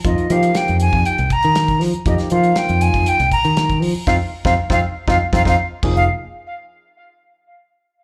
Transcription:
<<
  \new Staff \with { instrumentName = "Flute" } { \time 4/4 \key f \minor \tempo 4 = 119 ees''8 f''8 g''8 aes''8 g''8 bes''4 r8 | ees''8 f''8 g''8 aes''8 g''8 bes''4 r8 | f''16 r8 f''16 r16 f''16 r8 f''16 r16 f''16 f''16 r8. f''16 | r1 | }
  \new Staff \with { instrumentName = "Tine electric piano" } { \time 4/4 \key f \minor <f bes ees' f'>8 <f bes ees' g'>4. r2 | <f bes ees' g'>8 <f bes ees' f'>4. r2 | <c' ees' f'>16 r8 <c' ees' f'>16 r16 <c' ees' f'>16 r8 <c' ees' f'>16 r16 <c' ees' f'>16 <c' ees' f'>16 r8 <f bes ees' aes'>8 | r1 | }
  \new Staff \with { instrumentName = "Fingered electric bass" } { \clef bass \time 4/4 \key f \minor f,16 r16 f8 r16 f,8 f,16 r16 c,16 r16 ees8. f16 r16 | f,16 r16 f8 r16 f,8 f,16 r16 c,16 r16 ees8. f16 r16 | f,16 r8 f,16 r16 f,16 r8 f,16 r16 f,16 f,16 r8 f,,8 | r1 | }
  \new DrumStaff \with { instrumentName = "Drums" } \drummode { \time 4/4 <hh bd>16 hh16 hh16 hh16 <hh sn>16 hh16 hh16 bd16 hh16 hh16 <hh bd>16 hh16 <hh sn>16 <hh bd>16 <hho sn>16 hh16 | <hh bd>16 <hh sn>16 hh16 hh16 <hh sn>16 hh16 hh16 <hh bd>16 hh16 hh16 <hh bd>16 hh16 <hh sn>16 <hh bd>16 hho8 | <bd sn>8. <bd sn>16 r16 <bd sn>8. <bd sn>8 <bd sn>16 <bd sn>16 r8 <cymc bd>8 | r4 r4 r4 r4 | }
>>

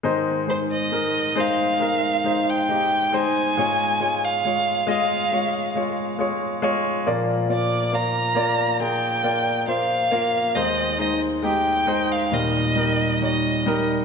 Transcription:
<<
  \new Staff \with { instrumentName = "Violin" } { \time 4/4 \key aes \major \tempo 4 = 68 r8 c''16 ees''8. f''4~ f''16 g''8. aes''8~ | aes''8. f''8. f''4 r4. | r8 d''8 bes''4 g''4 f''4 | ees''8 ees''8 g''8. f''16 ees''4 ees''8. r16 | }
  \new Staff \with { instrumentName = "Grand piano" } { \time 4/4 \key aes \major <aes ees' c''>8 <aes ees' c''>8 <aes ees' bes'>8 <aes ees' c''>8 <aes ees' bes'>8 <aes ees' c''>8 <aes ees' g'>8 <aes ees' c''>8 | <aes f' des''>8 <aes f' des''>8 <aes f' des''>8 <aes f' ees''>8 <aes f' des''>8 <aes f' des''>8 <aes f' des''>8 <aes f' des''>8 | <bes f' d''>8 <bes f' d''>8 <bes f' f''>8 <bes f' d''>8 <bes f' aes'>8 <bes f' d''>8 <bes f' c''>8 <bes f' f''>8 | <aes ees' c''>8 <aes ees' c''>8 <aes ees' g'>8 <aes ees' c''>8 <g ees' bes'>8 <g ees' bes'>8 <g ees' des''>8 <g ees' bes'>8 | }
  \new Staff \with { instrumentName = "Grand piano" } { \clef bass \time 4/4 \key aes \major <aes, ees>1 | aes,1 | <bes, f>1 | <ees, ees>2 <ees, bes,>2 | }
>>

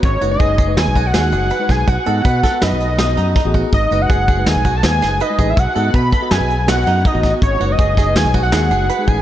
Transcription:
<<
  \new Staff \with { instrumentName = "Analog synth lead" } { \time 5/4 \key gis \phrygian \tempo 4 = 162 cis''8. dis''4~ dis''16 gis''8. fis''4.~ fis''16 gis''8 | fis''2 dis''2~ dis''8 r8 | dis''8. fis''4~ fis''16 gis''8. a''16 gis''4 dis''8. e''16 | fis''4 b''4 gis''4 fis''4 dis''8. r16 |
cis''8. dis''4~ dis''16 gis''8. fis''4.~ fis''16 gis''8 | }
  \new Staff \with { instrumentName = "Five-string banjo" } { \time 5/4 \key gis \phrygian r8 fis'8 gis'8 gis'4 fis'8 gis'8 gis'8 b'8 gis'8 | fis'8 a'8 b'8 a'8 b'4 fis'8 dis'8 dis'8 fis'8 | r8 fis'8 gis'8 gis'4 fis'8 gis'8 gis'8 b'8 gis'8 | fis'8 a'8 b'8 a'8 b'4 fis'8 dis'8 dis'8 fis'8 |
r8 fis'8 gis'8 gis'4 fis'8 gis'8 gis'8 b'8 gis'8 | }
  \new Staff \with { instrumentName = "Tine electric piano" } { \time 5/4 \key gis \phrygian r8 <gis dis' b'>4 r16 <gis dis' b'>4 r16 <gis dis' fis'>4 r16 <gis dis' b'>8. | r8 <b fis' dis''>4 r16 <b fis' b'>4 r16 <b fis' dis''>4 r16 <b fis' gis'>8. | r8 <gis dis' b'>4 r16 <gis dis' b'>4 r16 <gis dis' b'>4 r16 <gis dis' b'>8. | r8 <b fis' dis''>4 r16 <b fis' dis''>4 r16 <b fis' dis''>4 r16 <b fis' dis''>8. |
r8 <gis dis' b'>4 r16 <gis dis' b'>4 r16 <gis dis' gis'>4 r16 <gis dis' gis'>8. | }
  \new Staff \with { instrumentName = "Fingered electric bass" } { \clef bass \time 5/4 \key gis \phrygian gis,,8 fis,,8 fis,,4 dis,16 b,,8. dis,8 fis,,8 r8 b,,8 | b,,16 r16 gis,8 b,8 r8 fis,16 b,,4~ b,,16 fis,8 r16 a,,8 r16 | gis,,8 fis,,8 fis,,4 dis,16 b,,8. dis,8 fis,,8 r8 a,,8 | b,,16 r16 gis,8 b,8 r8 fis,16 b,,4~ b,,16 fis,8 r16 a,,8 r16 |
gis,,8 fis,,8 fis,,4 dis,16 b,,8. dis,8 fis,,8 r8 a,,8 | }
  \new DrumStaff \with { instrumentName = "Drums" } \drummode { \time 5/4 <hh bd>8 hh8 <hh bd>8 <hh bd>8 <hh sn>8 <hh bd>8 <hh sn>8 hh8 hh8 <hh bd sn>8 | <hh bd>8 hh8 <hh bd>8 <hh bd sn>8 <hh sn>8 hh8 <hh sn>8 hh8 <hh bd sn>8 <hh bd>8 | <hh bd>8 hh8 <hh bd>8 <hh bd>8 <hh sn>8 <hh bd>8 <hh sn>8 <hh sn>8 hh8 <hh bd>8 | <hh bd>8 hh8 <hh bd>8 <hh bd>8 <hh sn>8 hh8 <hh sn>8 hh8 <hh bd>8 <hh bd sn>8 |
<hh bd>8 hh8 <hh bd>8 <hh bd sn>8 <hh sn>8 <hh bd>8 <hh sn>8 hh8 hh8 <hh bd>8 | }
>>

